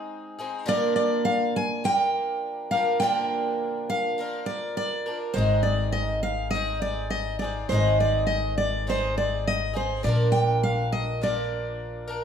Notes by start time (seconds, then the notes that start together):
Already playing: G#3 C4 D#4 G#4
0.39 G#3 C4 D#4 G#4
0.66 A#2 D3 F3 A#3 D4 A#4 D5
0.96 D5
1.25 F5
1.56 G#5
1.84 F3 A#3 D4 A#4 G5
2.71 F3 A#3 D4 A#4 F5
3.00 A#2 D3 F3 A#3 G5
3.04 D4 A#4
3.90 F5
4.18 F3 A#3 D4 A#4
4.46 D5
4.77 D5
5.06 F3 A#3 D4 A#4
5.34 G#1 G#2 D#3 G#3 C4 C5
5.38 D#4 G#4
5.63 D5
5.92 D#5
6.23 F5
6.51 G#3 C4 D#5
6.55 D#4 G#4
6.82 D5
7.10 D#5
7.39 D#4 G#4 D5
7.44 G#3 C4
7.69 G#1 G#2 D#3 G#3 C4 C5
7.73 D#4 G#4
8.00 D5
8.27 D#5
8.58 D5
8.87 G#3 C4 D#4 G#4 C5
9.18 D5
9.47 D#5
9.73 G#3 C4 D#4 G#4 C5
10.03 A#1 A#2 F3 A#3 D4 D5
10.08 A#4
10.32 G5
10.63 F5
10.92 D#5
11.21 F3 A#3 D4 A#4 D5
12.08 A#3 D4 A#4